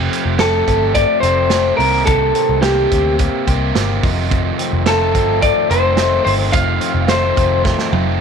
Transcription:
0.00 0.40 F2 medium
0.00 1.85 F2 medium
0.00 0.40 C3 medium
0.00 0.37 F3 medium
0.00 0.39 A3 medium
0.00 0.11 C4 soft
0.00 0.40 C4 medium
0.00 0.42 G4 medium
0.11 0.67 C4 medium
0.11 closed hi-hat medium
0.25 0.61 F1 medium
0.39 0.67 F3 medium
0.39 0.94 A3 medium
0.39 0.68 A3 medium
0.39 0.67 C4 medium
0.39 0.65 G4 medium
0.39 0.94 A4 medium
0.39 snare loud
0.39 closed hi-hat medium
0.67 1.03 G1 medium
0.67 1.25 F3 soft
0.67 1.24 A3 soft
0.67 1.23 C4 medium
0.67 1.24 C4 soft
0.67 1.23 G4 medium
0.67 kick medium
0.67 closed hi-hat medium
0.95 1.50 A3 medium
0.95 1.20 D5 medium
0.95 kick medium
0.95 closed hi-hat medium
1.20 1.71 F1 medium
1.20 2.35 C4 medium
1.20 1.51 G4 soft
1.20 1.74 C5 loud
1.20 closed hi-hat medium
1.25 1.49 F3 soft
1.25 1.50 A3 soft
1.25 1.52 C4 soft
1.50 1.79 F3 medium
1.50 1.79 A3 medium
1.50 1.85 A3 medium
1.50 1.78 C4 medium
1.50 snare medium
1.50 closed hi-hat medium
1.54 1.78 G4 medium
1.77 2.03 C2 medium
1.77 2.06 C3 medium
1.77 2.63 A#3 medium
1.77 2.65 C4 medium
1.77 2.63 G4 medium
1.77 2.05 A#4 medium
1.77 open hi-hat medium
1.81 2.65 C3 soft
1.81 2.63 D#3 soft
2.06 2.31 C2 medium
2.06 4.08 C3 medium
2.06 2.59 A4 medium
2.06 kick loud
2.06 closed hi-hat medium
2.35 2.91 C4 medium
2.35 closed hi-hat medium
2.49 2.85 C2 medium
2.62 2.91 D#3 medium
2.62 3.18 A#3 medium
2.62 2.92 A#3 medium
2.62 2.92 C4 medium
2.62 3.15 G4 medium
2.62 snare loud
2.62 closed hi-hat medium
2.67 2.91 G4 medium
2.91 3.27 D2 medium
2.91 3.46 C4 medium
2.91 3.49 C4 soft
2.91 3.46 G4 medium
2.91 kick medium
2.91 closed hi-hat medium
2.95 3.49 A#3 soft
3.19 3.74 A#3 medium
3.19 kick medium
3.19 closed hi-hat medium
3.47 3.71 C2 medium
3.47 3.75 A#3 soft
3.47 4.58 C4 medium
3.47 3.76 C4 soft
3.47 3.75 G4 medium
3.47 kick medium
3.47 closed hi-hat medium
3.75 3.99 G1 medium
3.75 4.03 D#3 medium
3.75 4.09 A#3 medium
3.75 4.04 A#3 medium
3.75 4.04 C4 medium
3.75 4.03 G4 medium
3.75 snare medium
3.75 closed hi-hat medium
4.03 4.51 F1 loud
4.03 4.29 F2 medium
4.03 4.88 F2 medium
4.03 4.88 C3 medium
4.03 4.86 D#3 medium
4.03 4.86 A3 medium
4.03 4.88 D#4 medium
4.03 4.89 F4 medium
4.03 kick medium
4.03 open hi-hat medium
4.30 6.52 F2 medium
4.30 kick loud
4.30 closed hi-hat medium
4.58 5.14 C4 medium
4.58 closed hi-hat medium
4.73 5.15 F1 loud
4.86 5.15 D#3 medium
4.86 5.42 A3 medium
4.86 5.15 A3 medium
4.86 5.14 D#4 medium
4.86 5.13 F4 medium
4.86 5.42 A4 medium
4.86 snare loud
4.86 closed hi-hat medium
5.14 5.50 G1 medium
5.14 5.73 D#3 soft
5.14 5.71 A3 soft
5.14 5.69 C4 medium
5.14 5.71 D#4 medium
5.14 5.69 F4 medium
5.14 kick medium
5.14 closed hi-hat medium
5.42 5.97 A3 medium
5.42 5.70 D5 medium
5.42 kick medium
5.42 closed hi-hat medium
5.70 6.18 F1 medium
5.70 5.97 D#3 soft
5.70 5.98 A3 soft
5.70 6.24 C4 medium
5.70 5.99 D#4 soft
5.70 5.98 F4 soft
5.70 6.24 C5 medium
5.70 closed hi-hat medium
5.97 6.54 D#3 medium
5.97 7.08 A3 medium
5.97 6.54 A3 medium
5.97 6.55 D#4 medium
5.97 snare medium
5.97 closed hi-hat medium
6.02 6.55 F4 medium
6.25 6.50 G1 medium
6.25 6.79 C4 medium
6.25 6.33 C5 medium
6.25 open hi-hat medium
6.52 6.78 F1 loud
6.52 8.21 F2 medium
6.52 7.10 F2 medium
6.52 7.10 C3 medium
6.52 7.09 D#3 medium
6.52 7.09 A3 medium
6.52 7.11 D#4 medium
6.52 7.12 F4 medium
6.52 7.09 F5 loud
6.52 kick loud
6.52 closed hi-hat medium
6.81 7.35 C4 medium
6.81 closed hi-hat medium
6.95 7.31 F1 loud
7.08 7.37 D#3 medium
7.08 7.63 A3 medium
7.08 7.38 A3 medium
7.08 7.38 D#4 medium
7.08 7.61 C5 medium
7.08 snare loud
7.08 closed hi-hat medium
7.12 7.37 F4 medium
7.36 7.73 F1 medium
7.36 7.94 A3 soft
7.36 7.91 C4 medium
7.36 7.94 D#4 soft
7.36 7.93 F4 soft
7.36 kick medium
7.36 closed hi-hat medium
7.41 7.96 D#3 soft
7.64 8.19 A3 medium
7.64 kick medium
7.64 snare medium
7.78 snare soft
7.92 8.17 F1 loud
7.92 8.21 A3 soft
7.92 8.21 C4 medium
7.92 8.21 D#4 medium
7.92 8.21 F4 medium
7.92 high tom medium
7.96 8.20 D#3 soft

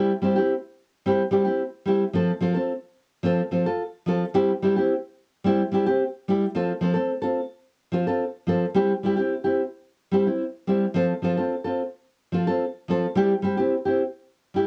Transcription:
0.00 0.11 G3 medium
0.00 0.11 C4 medium
0.00 0.11 E4 medium
0.00 0.12 G4 medium
0.22 0.36 G3 medium
0.22 0.36 C4 medium
0.22 0.36 E4 medium
0.22 0.35 G4 medium
0.36 0.54 C4 soft
0.36 0.53 E4 soft
0.36 0.52 G4 medium
1.06 1.22 G3 medium
1.06 1.22 C4 medium
1.06 1.22 E4 medium
1.06 1.23 G4 medium
1.31 1.45 G3 medium
1.31 1.46 C4 medium
1.31 1.45 E4 medium
1.31 1.44 G4 medium
1.45 1.63 C4 soft
1.45 1.62 E4 soft
1.45 1.62 G4 medium
1.86 2.03 G3 medium
1.86 2.03 C4 medium
1.86 2.04 E4 medium
1.86 2.04 G4 medium
2.14 2.30 F3 medium
2.14 2.31 C4 medium
2.14 2.31 A4 medium
2.14 muted nylon-string guitar stroke medium
2.41 2.55 F3 medium
2.41 2.55 C4 medium
2.41 2.55 F4 medium
2.41 2.53 A4 medium
2.55 2.73 C4 soft
2.55 2.72 F4 soft
2.55 2.71 A4 soft
3.23 3.40 F3 medium
3.23 3.41 C4 medium
3.23 3.41 F4 medium
3.23 3.42 A4 medium
3.51 3.65 F3 medium
3.51 3.66 C4 medium
3.51 3.66 F4 medium
3.51 3.65 A4 medium
3.66 3.83 F4 soft
3.66 3.82 A4 medium
4.06 4.23 F3 medium
4.06 4.24 C4 medium
4.06 4.24 F4 medium
4.06 4.24 A4 medium
4.34 4.51 G3 medium
4.34 4.51 C4 medium
4.34 4.51 E4 medium
4.34 4.51 G4 medium
4.62 4.76 G3 medium
4.62 4.76 C4 medium
4.62 4.77 E4 medium
4.62 4.75 G4 medium
4.76 4.94 C4 soft
4.76 4.93 E4 soft
4.76 4.92 G4 medium
5.44 5.61 G3 medium
5.44 5.61 C4 medium
5.44 5.62 E4 medium
5.44 5.62 G4 medium
5.71 5.85 G3 medium
5.71 5.86 C4 medium
5.71 5.86 E4 medium
5.71 5.85 G4 medium
5.86 6.03 C4 soft
5.86 6.02 G4 medium
6.28 6.44 G3 medium
6.28 6.45 E4 medium
6.28 6.45 G4 medium
6.28 muted nylon-string guitar stroke medium
6.55 6.71 F3 medium
6.55 6.71 C4 medium
6.55 6.72 F4 medium
6.55 6.72 A4 medium
6.81 6.95 F3 medium
6.81 6.95 C4 medium
6.81 6.94 F4 medium
6.81 6.92 A4 medium
6.94 7.13 C4 soft
6.94 7.11 A4 soft
6.94 muted nylon-string guitar stroke soft
7.22 7.40 C4 soft
7.22 7.40 F4 soft
7.22 7.39 A4 medium
7.92 8.06 F3 medium
7.92 8.07 C4 medium
7.92 8.07 F4 medium
7.92 muted nylon-string guitar stroke medium
8.07 8.24 C4 soft
8.07 8.24 F4 soft
8.07 8.23 A4 medium
8.47 8.64 F3 medium
8.47 8.64 C4 medium
8.47 8.64 F4 medium
8.47 8.65 A4 medium
8.74 8.91 G3 medium
8.74 8.92 C4 medium
8.74 8.92 E4 medium
8.74 8.92 G4 medium
9.03 9.17 G3 medium
9.03 9.17 C4 medium
9.03 9.17 E4 medium
9.03 9.15 G4 medium
9.17 9.34 C4 soft
9.17 9.34 E4 soft
9.17 9.33 G4 soft
9.44 9.62 C4 soft
9.44 9.61 E4 soft
9.44 9.61 G4 medium
10.12 10.26 G3 medium
10.12 10.26 C4 medium
10.12 10.26 E4 medium
10.12 10.27 G4 medium
10.27 10.44 C4 soft
10.27 10.43 E4 soft
10.67 10.84 G3 medium
10.67 10.85 C4 medium
10.67 10.85 E4 medium
10.67 10.85 G4 medium
10.94 11.12 F3 medium
10.94 11.12 C4 medium
10.94 11.13 F4 medium
10.94 11.13 A4 medium
11.22 11.37 F3 medium
11.22 11.37 C4 medium
11.22 11.37 F4 medium
11.22 11.36 A4 medium
11.37 11.55 C4 soft
11.37 11.54 F4 soft
11.37 11.54 A4 soft
11.64 11.82 C4 soft
11.64 11.82 F4 soft
11.64 11.81 A4 medium
12.32 12.47 F3 medium
12.32 12.47 C4 medium
12.32 12.47 F4 medium
12.32 12.46 A4 medium
12.47 12.65 C4 soft
12.47 12.64 F4 medium
12.47 12.64 A4 medium
12.88 13.05 F3 medium
12.88 13.06 C4 medium
12.88 13.06 F4 medium
12.88 13.06 A4 medium
13.15 13.32 G3 medium
13.15 13.32 C4 medium
13.15 13.32 E4 medium
13.15 13.33 G4 medium
13.42 13.57 G3 medium
13.42 13.57 C4 medium
13.42 13.56 G4 medium
13.57 13.75 C4 soft
13.57 13.74 E4 soft
13.57 13.74 G4 medium
13.85 14.03 C4 soft
13.85 14.02 E4 soft
13.85 14.01 G4 soft
14.54 14.67 G3 medium
14.54 14.67 E4 medium
14.54 14.67 G4 medium

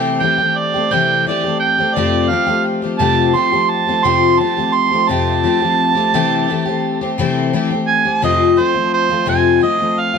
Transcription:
0.00 0.21 C3 medium
0.00 0.19 E3 loud
0.00 0.21 A3 loud
0.00 0.21 C4 loud
0.00 0.22 G4 loud
0.20 0.38 E3 medium
0.20 0.39 A3 medium
0.20 0.38 C4 medium
0.20 0.59 G5 medium
0.24 0.37 G4 medium
0.38 0.74 A3 soft
0.38 0.74 C4 soft
0.38 0.73 G4 soft
0.57 0.94 D5 medium
0.74 0.91 A3 soft
0.74 0.91 C4 soft
0.74 0.91 G4 medium
0.91 1.25 C3 medium
0.91 1.25 E3 medium
0.91 1.26 A3 medium
0.91 1.26 C4 medium
0.91 1.27 G4 medium
0.91 1.25 G5 loud
1.27 1.43 E3 medium
1.27 1.44 A3 medium
1.27 1.45 C4 medium
1.27 1.42 G4 medium
1.27 1.59 D5 medium
1.44 1.79 C4 soft
1.44 1.77 G4 medium
1.48 1.80 A3 soft
1.60 1.96 G5 medium
1.78 1.96 A3 soft
1.78 1.96 C4 medium
1.78 1.95 G4 medium
1.95 2.30 F2 medium
1.95 2.31 C3 medium
1.95 2.29 F3 medium
1.95 2.30 A3 medium
1.95 2.31 C4 medium
1.95 2.31 G4 loud
1.95 2.31 D5 loud
2.29 2.47 F3 medium
2.29 2.48 A3 medium
2.29 2.46 C4 medium
2.29 2.63 F5 medium
2.33 2.45 G4 medium
2.46 2.83 F3 soft
2.46 2.83 A3 soft
2.46 2.82 C4 soft
2.46 2.81 G4 medium
2.82 2.98 F3 soft
2.82 3.00 A3 soft
2.82 2.99 C4 medium
2.82 2.99 G4 medium
2.98 3.34 F2 medium
2.98 3.34 C3 medium
2.98 3.32 F3 medium
2.98 3.33 A3 medium
2.98 3.35 C4 medium
2.98 3.35 G4 medium
2.98 3.38 A5 loud
3.34 3.51 F3 medium
3.34 3.52 A3 medium
3.34 3.52 C4 medium
3.34 3.51 G4 medium
3.34 3.71 C6 medium
3.52 3.88 F3 soft
3.52 3.88 A3 soft
3.52 3.87 C4 medium
3.52 3.85 G4 medium
3.70 4.06 A5 loud
3.87 4.04 F3 soft
3.87 4.04 A3 medium
3.87 4.05 C4 medium
3.87 4.04 G4 medium
4.04 4.39 F2 medium
4.04 4.39 C3 medium
4.04 4.37 F3 medium
4.04 4.39 A3 medium
4.04 4.40 C4 medium
4.04 4.40 G4 medium
4.04 4.41 C6 loud
4.38 4.56 F3 medium
4.38 4.57 A3 medium
4.38 4.57 C4 medium
4.38 4.55 G4 medium
4.38 4.75 A5 loud
4.57 4.93 F3 soft
4.57 4.93 A3 soft
4.57 4.91 C4 medium
4.57 4.90 G4 medium
4.74 5.10 C6 loud
4.91 5.08 F3 soft
4.91 5.09 A3 soft
4.91 5.09 C4 medium
4.91 5.09 G4 medium
5.08 5.44 F2 medium
5.08 5.44 C3 medium
5.08 5.42 F3 medium
5.08 5.43 A3 medium
5.08 5.45 C4 medium
5.08 5.45 G4 loud
5.08 7.14 A5 loud
5.43 5.61 F3 medium
5.43 5.61 A3 medium
5.43 5.61 C4 medium
5.43 5.59 G4 medium
5.61 5.97 F3 soft
5.61 5.96 A3 soft
5.61 5.95 C4 medium
5.61 5.94 G4 medium
5.95 6.14 F3 medium
5.95 6.14 A3 medium
5.95 6.14 C4 medium
5.95 6.13 G4 medium
6.14 6.49 C3 loud
6.14 6.47 E3 medium
6.14 6.49 A3 loud
6.14 6.49 C4 loud
6.14 6.49 G4 loud
6.48 6.66 E3 medium
6.48 6.67 A3 medium
6.48 6.67 C4 medium
6.48 6.64 G4 medium
6.66 7.02 A3 medium
6.66 7.01 C4 medium
6.66 7.00 G4 medium
7.01 7.18 A3 medium
7.01 7.19 C4 medium
7.01 7.18 G4 medium
7.18 7.53 C3 medium
7.18 7.52 E3 loud
7.18 7.53 A3 loud
7.18 7.54 C4 loud
7.18 7.54 G4 loud
7.53 7.71 E3 medium
7.53 7.71 A3 medium
7.53 7.71 C4 medium
7.53 7.69 G4 medium
7.70 8.07 A3 soft
7.70 8.06 C4 soft
7.70 8.04 G4 medium
7.87 8.21 G#5 loud
8.05 8.22 A3 soft
8.05 8.22 C4 medium
8.05 8.23 G4 medium
8.22 8.57 F2 medium
8.22 8.58 C3 medium
8.22 8.56 F3 medium
8.22 8.57 A3 medium
8.22 8.58 C4 medium
8.22 8.59 F4 medium
8.22 8.60 D#5 loud
8.57 8.75 F3 medium
8.57 8.75 A3 medium
8.57 8.74 C4 medium
8.57 8.73 F4 medium
8.57 8.92 C5 medium
8.74 9.11 F3 soft
8.74 9.10 A3 soft
8.74 9.09 C4 soft
8.74 9.08 F4 medium
8.93 9.27 C5 loud
9.09 9.25 F3 soft
9.09 9.26 A3 soft
9.09 9.27 C4 soft
9.09 9.27 F4 medium
9.26 9.62 F2 medium
9.26 9.62 C3 medium
9.26 9.60 F3 medium
9.26 9.61 A3 medium
9.26 9.62 C4 medium
9.26 9.63 F4 medium
9.26 9.62 G#5 medium
9.61 9.79 F3 medium
9.61 9.80 A3 medium
9.61 9.79 C4 medium
9.61 9.77 F4 medium
9.61 10.01 D#5 medium
9.78 10.15 A3 soft
9.78 10.14 C4 soft
9.78 10.12 F4 medium
9.83 10.15 F3 soft
10.00 10.18 F5 medium
10.14 10.18 C4 medium
10.14 10.18 F4 medium

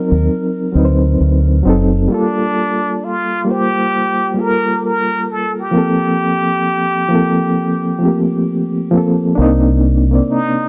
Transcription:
0.00 0.72 F#3 medium
0.00 0.74 C4 medium
0.00 0.76 D#4 medium
0.00 2.13 A#4 loud
0.12 0.27 D#2 medium
0.72 1.15 D2 medium
0.72 1.58 F#3 medium
0.72 1.59 C4 medium
0.76 1.61 D#4 medium
0.76 0.84 B4 medium
0.85 1.65 C5 medium
1.20 1.61 D2 medium
1.63 2.06 F#1 medium
1.63 2.07 F#3 medium
1.63 2.08 C4 medium
1.67 2.09 D#4 medium
1.67 2.10 A4 loud
2.08 3.37 G3 medium
2.08 3.38 A#3 medium
2.12 3.06 D4 loud
2.12 3.39 F4 medium
2.12 3.40 A4 medium
3.04 3.51 F4 loud
3.45 4.31 G3 medium
3.45 4.32 A#3 medium
3.49 4.33 F4 medium
3.49 4.42 G4 loud
3.49 4.34 C5 medium
4.34 5.64 G3 medium
4.34 5.65 A#3 medium
4.39 5.66 F4 medium
4.39 4.48 A4 medium
4.39 4.85 A#4 loud
4.47 5.71 A#4 medium
4.86 5.33 A#4 loud
5.31 5.58 A4 medium
5.59 8.27 G4 loud
5.71 7.01 F3 medium
5.71 7.02 A#3 medium
5.75 7.03 C4 medium
5.75 7.04 A4 loud
7.09 7.95 F3 medium
7.09 7.96 A#3 medium
7.13 7.97 C4 medium
7.13 7.98 A4 medium
7.99 8.86 F3 medium
7.99 8.09 A3 medium
8.03 8.88 C4 medium
8.03 8.89 G4 medium
8.07 8.90 A#3 medium
8.91 9.34 F3 medium
8.91 9.35 A#3 medium
8.95 9.37 C4 medium
8.95 9.38 A4 medium
9.35 10.19 C2 medium
9.35 10.04 A#3 loud
9.35 10.03 D4 loud
9.39 10.05 C4 loud
9.39 10.06 D#4 loud
10.09 10.69 C3 medium
10.09 10.69 A#3 medium
10.13 10.69 C4 medium
10.13 10.69 D5 medium
10.31 10.69 D#4 medium

